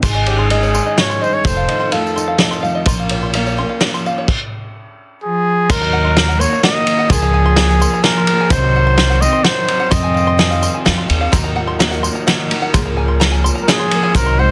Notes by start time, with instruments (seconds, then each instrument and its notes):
Already playing: steel-string acoustic guitar D#3
0.02 upright bass G#1, twelve-string acoustic guitar G#2 C#3 G#3 C#4 D#4 G#4, steel-string acoustic guitar G#2 G#4, five-string banjo C6, kick, crash, tambourine
0.15 five-string banjo D#5
0.26 steel-string acoustic guitar C#4, trumpet G4, five-string banjo C#5, ride
0.39 trumpet G#4, five-string banjo C6
0.50 steel-string acoustic guitar D#3 G#3, twelve-string acoustic guitar G#3 C#4 D#4 G#4, trumpet G#4, five-string banjo D#5, ride
0.63 five-string banjo C#5, tambourine
0.74 twelve-string acoustic guitar G#3 C#4 D#4 G#4, steel-string acoustic guitar C#4, five-string banjo C6, tambourine
0.86 five-string banjo D#5
0.97 steel-string acoustic guitar G#2, twelve-string acoustic guitar G#3 C#4 D#4, five-string banjo C#5, trumpet C#5, snare, ride, tambourine
1.10 five-string banjo C6, tambourine
1.21 steel-string acoustic guitar G2, trumpet C5, five-string banjo D#5, tambourine
1.33 five-string banjo C#5, trumpet C#5
1.44 upright bass F1, twelve-string acoustic guitar F2 C3 D#3 A3 C4 F4, steel-string acoustic guitar F2 A4, trumpet C5, kick, ride, tambourine
1.57 five-string banjo F5
1.68 steel-string acoustic guitar D#4, five-string banjo D#5, ride
1.80 five-string banjo C6
1.91 twelve-string acoustic guitar D#3 A3 C4 F4, steel-string acoustic guitar F3 A3, trumpet A4, five-string banjo F5, ride
2.07 tambourine
2.16 steel-string acoustic guitar D#4, five-string banjo C6, tambourine
2.28 five-string banjo F5
2.38 twelve-string acoustic guitar D#3 A3 C4 F4, steel-string acoustic guitar F3, five-string banjo D#5, snare, ride, tambourine
2.51 five-string banjo C6, tambourine
2.63 steel-string acoustic guitar A3, five-string banjo F5, tambourine
2.75 five-string banjo D#5
2.85 upright bass A#1, twelve-string acoustic guitar A#2 F3 A#3 C#4 F4, five-string banjo C6, kick, ride, tambourine
2.99 five-string banjo F5
3.09 five-string banjo C#5, ride
3.23 five-string banjo C6
3.33 twelve-string acoustic guitar F3 A#3 C#4 F4, five-string banjo F5, ride
3.46 five-string banjo C#5, tambourine
3.56 twelve-string acoustic guitar A#3 C#4 F4, five-string banjo C6
3.69 five-string banjo F5
3.80 twelve-string acoustic guitar F3 A#3 C#4 F4, five-string banjo C#5, snare, ride, tambourine
3.94 five-string banjo C6, tambourine
4.06 five-string banjo F5, tambourine
4.18 five-string banjo C#5
4.28 kick, crash
5.23 cello F3, trumpet G#4
5.70 upright bass D#2, twelve-string acoustic guitar D#3 A#3 D#4 F#4, cello F#3, trumpet A#4, five-string banjo C6, kick, crash, tambourine
5.81 five-string banjo A#5
5.93 five-string banjo F#5
6.05 five-string banjo C6
6.17 twelve-string acoustic guitar D#3 A#3 D#4 F#4, five-string banjo A#5, snare, ride
6.28 five-string banjo F#5, tambourine
6.40 cello A#3, twelve-string acoustic guitar A#3 D#4 F#4, trumpet C#5, five-string banjo C6, tambourine
6.52 five-string banjo A#5, tambourine
6.63 twelve-string acoustic guitar D#3 A#3 D#4 F#4, cello A#3, trumpet D#5, five-string banjo F#5, snare, ride
6.87 ride
6.99 five-string banjo F#5
7.09 upright bass C#2, twelve-string acoustic guitar C#3 F3 A#3 F4 G#4, cello F3, trumpet G#4, five-string banjo C6, kick, ride, tambourine
7.22 five-string banjo A#5
7.34 five-string banjo G#5
7.46 five-string banjo C6
7.56 twelve-string acoustic guitar F3 A#3 F4 G#4, five-string banjo A#5, snare, ride
7.70 five-string banjo G#5, tambourine
7.79 twelve-string acoustic guitar A#3 F4 G#4, five-string banjo C6, tambourine
7.94 five-string banjo A#5, tambourine
8.03 twelve-string acoustic guitar F3 A#3 F4 G#4, cello F3, trumpet A#4, five-string banjo G#5, snare, ride
8.17 five-string banjo C6
8.27 twelve-string acoustic guitar A#3 F4 G#4, ride
8.40 five-string banjo G#5
8.50 upright bass C2, twelve-string acoustic guitar C3 D#3 C4 D#4 F#4, cello F#3, trumpet C5, five-string banjo C6, kick, ride, tambourine
8.64 five-string banjo C6
8.76 five-string banjo F#5
8.87 five-string banjo C6
8.97 twelve-string acoustic guitar D#3 C4 D#4 F#4, five-string banjo C6, snare, ride
9.10 five-string banjo F#5, tambourine
9.21 cello C4, trumpet D#5, five-string banjo C6, tambourine
9.33 five-string banjo C6
9.44 twelve-string acoustic guitar D#3 C4 D#4 F#4, cello F#3, trumpet C5, five-string banjo F#5, snare, ride
9.68 twelve-string acoustic guitar C4 D#4 F#4, ride
9.80 five-string banjo F#5
9.91 twelve-string acoustic guitar F2 C3 D#3 G#3 C4 F4, upright bass F2, cello C4, trumpet D#5, five-string banjo C6, kick, ride, tambourine
10.03 five-string banjo G#5
10.14 five-string banjo F5, tambourine
10.27 five-string banjo C6
10.38 twelve-string acoustic guitar D#3 C4 F4, five-string banjo G#5, snare, ride
10.50 five-string banjo F5, tambourine
10.61 twelve-string acoustic guitar D#3 G#3 C4 F4, five-string banjo C6, tambourine
10.74 five-string banjo G#5
10.85 upright bass F2, twelve-string acoustic guitar D#3 G#3 C4 F4, five-string banjo F5, snare, ride, tambourine
10.97 five-string banjo C6
11.08 upright bass D#2, twelve-string acoustic guitar D#3 G#3 C4 F4, ride
11.21 five-string banjo F5
11.32 upright bass D#2, upright piano D#2 D#3 F#3 A#3 D#4 A#4, twelve-string acoustic guitar D#3 A#3 D#4 F#4, five-string banjo C6, kick, clap, ride, tambourine
11.44 five-string banjo A#5
11.56 upright piano F#3 A#3 D#4 F4, five-string banjo F#5
11.67 five-string banjo C6
11.79 twelve-string acoustic guitar D#3 A#3 D#4 F#4, upright piano F#3 A#3 D#4 A#4, five-string banjo A#5, snare, clap, ride
11.91 five-string banjo F#5, tambourine
12.03 upright piano F#3 A#3 D#4 A#4, twelve-string acoustic guitar A#3 D#4 F#4, five-string banjo C6, tambourine
12.15 five-string banjo A#5, tambourine
12.27 twelve-string acoustic guitar D#3 A#3 D#4 F#4, upright piano F#3 A#3 D#4 A#4, five-string banjo F#5, snare, clap, ride
12.50 upright piano F#3 A#3 D#4 F#4, twelve-string acoustic guitar A#3 D#4 F#4, ride
12.62 five-string banjo F#5
12.74 upright bass C#2, upright piano C#2 C#3 G#3 C#4 F4 A#4, twelve-string acoustic guitar C#3 F3 A#3 F4 G#4, five-string banjo C6, kick, clap, ride, tambourine
12.85 five-string banjo A#5
12.97 upright piano G#3 C#4 F4 A#4, five-string banjo G#5
13.08 five-string banjo C6
13.20 twelve-string acoustic guitar F3 A#3 F4 G#4, upright piano G#3 C#4 F4 A#4, five-string banjo A#5, snare, clap, ride
13.32 five-string banjo G#5, tambourine
13.44 upright piano G#3 C#4 F4 A#4, five-string banjo C6, tambourine
13.55 five-string banjo A#5, tambourine
13.62 cello F#3, trumpet A#4
13.67 cello F3, twelve-string acoustic guitar F3 A#3 F4 G#4, upright piano G#3 C#4 F4 A#4, trumpet G#4, five-string banjo G#5, snare, clap, ride
13.79 five-string banjo C6
13.91 upright piano G#3 C#4 F4 A#4, twelve-string acoustic guitar A#3 F4 G#4, ride
14.03 five-string banjo G#5
14.14 upright piano C2 C3 F#3 C4 D#4 C5, upright bass C2, twelve-string acoustic guitar C3 D#3 C4 D#4 F#4, cello F#3, trumpet A#4, five-string banjo C6, kick, clap, ride, tambourine
14.26 five-string banjo C6
14.37 upright piano F#3 C4 D#4 F#4, cello G#3, trumpet C5, five-string banjo F#5